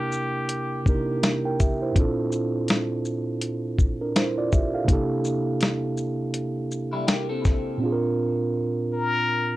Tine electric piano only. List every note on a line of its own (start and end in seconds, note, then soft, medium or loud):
0.00 0.81 C3 medium
0.00 0.82 A#3 medium
0.00 0.82 D4 medium
0.00 0.83 E4 medium
0.00 0.84 G4 medium
0.00 0.85 A#4 medium
0.85 1.95 C3 medium
0.85 1.95 A#3 medium
0.85 1.95 D4 medium
0.85 0.94 D#4 soft
0.85 1.24 G4 medium
0.89 1.24 A#4 medium
0.94 1.26 E4 medium
1.45 1.59 A#4 medium
1.45 1.59 G5 medium
1.60 1.81 G4 medium
1.60 1.80 E5 medium
1.82 2.17 E4 medium
1.82 2.16 C5 medium
1.93 4.10 A#2 medium
1.93 4.11 C4 medium
1.93 3.75 D4 medium
1.99 3.76 F4 medium
1.99 3.77 A4 medium
4.01 4.15 D4 soft
4.01 4.15 A#4 medium
4.16 4.37 E4 medium
4.16 4.36 C5 medium
4.38 4.52 F4 medium
4.38 4.51 D5 medium
4.52 4.73 G4 medium
4.52 4.73 E5 medium
4.74 4.92 A4 medium
4.74 5.09 F5 medium
4.85 7.75 C3 medium
4.85 7.76 A#3 medium
4.85 7.77 D4 medium
4.90 7.78 E4 medium
4.90 7.78 G4 medium
4.90 7.79 A4 medium
7.78 9.57 A#2 medium
7.78 9.57 C4 medium
7.82 9.57 D4 medium
7.82 9.57 F4 medium
7.86 7.91 G#4 medium
7.92 9.57 A#4 medium